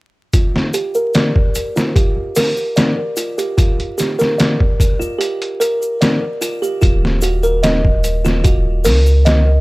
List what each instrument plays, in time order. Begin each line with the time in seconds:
0.33 music box F4, kick, closed hi-hat, shaker
0.56 snare
0.73 music box G4, closed hi-hat, shaker
0.95 music box A#4, shaker
1.14 music box D5, snare, closed hi-hat, shaker
1.36 kick
1.55 closed hi-hat, shaker
1.76 music box F4, snare, shaker
1.95 music box G4, kick, closed hi-hat, shaker
2.36 music box A#4, snare, open hi-hat, shaker
2.57 shaker
2.76 music box D5, snare, closed hi-hat, shaker
3.17 music box F4, closed hi-hat, shaker
3.38 music box G4, closed hi-hat, shaker
3.57 music box F4, kick, closed hi-hat, shaker
3.80 closed hi-hat
3.98 music box G4, snare, closed hi-hat, shaker
4.19 music box A#4, snare, shaker
4.38 music box D5, snare, closed hi-hat, shaker
4.60 kick
4.80 kick, closed hi-hat, shaker
5.00 music box F4, shaker
5.18 music box G4, closed hi-hat, shaker
5.42 closed hi-hat
5.60 music box A#4, closed hi-hat, shaker
5.82 shaker
6.01 music box D5, snare, closed hi-hat, shaker
6.41 music box F4, closed hi-hat, shaker
6.62 music box G4, shaker
6.81 sub bass D#1, music box F4, kick, closed hi-hat, shaker
7.05 snare
7.21 music box F#4, closed hi-hat, shaker
7.43 music box A#4, shaker
7.63 music box D#5, snare, closed hi-hat, shaker
7.85 kick
8.04 closed hi-hat, shaker
8.25 music box F4, snare, shaker
8.44 music box F#4, kick, closed hi-hat, shaker
8.84 sub bass C#2, music box A#4, snare, open hi-hat, shaker
9.06 shaker
9.25 music box D#5, snare, closed hi-hat, shaker